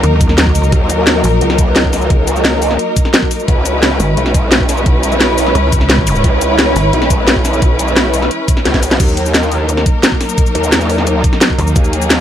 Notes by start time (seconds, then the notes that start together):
Already playing: F#3 A#3 D#4 F#4 A#4 D#5 A#5
0.03 D#2, closed hi-hat
0.21 kick, closed hi-hat, cabasa
0.29 snare
0.38 snare, closed hi-hat
0.47 kick
0.51 D2, open hi-hat, cabasa
0.64 cabasa
0.72 D#2, kick, closed hi-hat
0.90 closed hi-hat, cabasa
1.07 snare, closed hi-hat
1.24 A#1, open hi-hat, cabasa
1.41 C#2, closed hi-hat
1.50 snare
1.58 kick, closed hi-hat, cabasa
1.76 snare, closed hi-hat
1.84 kick
1.93 snare, open hi-hat, cabasa
2.02 cabasa
2.10 kick, closed hi-hat
2.27 closed hi-hat, cabasa
2.36 cabasa
2.45 snare, closed hi-hat
2.62 open hi-hat, cabasa
2.71 snare
2.79 closed hi-hat
2.96 kick, closed hi-hat, cabasa
3.05 snare
3.14 snare, closed hi-hat
3.22 kick
3.31 open hi-hat, cabasa
3.40 cabasa
3.48 C#2 G#3 C#4 E4 B4, kick, closed hi-hat
3.65 closed hi-hat, cabasa
3.83 snare, closed hi-hat
3.88 C#5
4.00 G#1, open hi-hat, cabasa
4.04 B5
4.17 B1, closed hi-hat
4.26 snare
4.34 kick, closed hi-hat, cabasa
4.52 snare, closed hi-hat
4.60 kick
4.69 snare, open hi-hat, cabasa
4.77 cabasa
4.86 kick, closed hi-hat
5.03 closed hi-hat, cabasa
5.12 cabasa
5.21 snare, closed hi-hat
5.38 open hi-hat, cabasa
5.47 snare
5.55 C#2, closed hi-hat
5.72 kick, closed hi-hat, cabasa
5.81 snare
5.90 snare, closed hi-hat
5.98 kick
6.07 open hi-hat, zap, cabasa
6.16 cabasa
6.24 C#2, kick, closed hi-hat
6.41 closed hi-hat, cabasa
6.59 snare, closed hi-hat
6.76 G#1, open hi-hat, cabasa
6.93 B1, closed hi-hat
7.02 snare
7.10 kick, closed hi-hat, cabasa
7.28 snare, closed hi-hat
7.36 kick
7.45 snare, open hi-hat, cabasa
7.53 cabasa
7.62 kick, closed hi-hat
7.79 closed hi-hat, cabasa
7.88 cabasa
7.97 snare, closed hi-hat
8.14 open hi-hat, cabasa
8.22 snare
8.31 closed hi-hat
8.48 kick, closed hi-hat, cabasa
8.57 snare
8.65 C#2, snare, closed hi-hat
8.74 kick, snare
8.83 open hi-hat, cabasa
8.91 snare, cabasa
9.00 D#2 F#3 A#3 D#4 A#4, kick, closed hi-hat, crash, cabasa
9.09 cabasa
9.17 closed hi-hat
9.26 cabasa
9.34 snare, closed hi-hat, cabasa
9.43 cabasa
9.52 open hi-hat, cabasa
9.69 closed hi-hat, cabasa
9.77 snare
9.86 kick, closed hi-hat, cabasa
10.03 snare, closed hi-hat, cabasa
10.12 kick
10.21 snare, open hi-hat
10.29 cabasa
10.38 kick, closed hi-hat, cabasa
10.46 cabasa
10.55 D#2, closed hi-hat
10.64 cabasa
10.72 E2, snare, closed hi-hat, cabasa
10.81 cabasa
10.90 open hi-hat, cabasa
10.98 snare
11.07 closed hi-hat, cabasa
11.24 kick, closed hi-hat, cabasa
11.33 snare
11.41 snare, closed hi-hat, cabasa
11.50 kick
11.58 D#2, open hi-hat
11.67 cabasa
11.76 D#2 G#4, kick, closed hi-hat, cabasa
11.84 cabasa
11.93 closed hi-hat
12.02 cabasa
12.10 snare, closed hi-hat, cabasa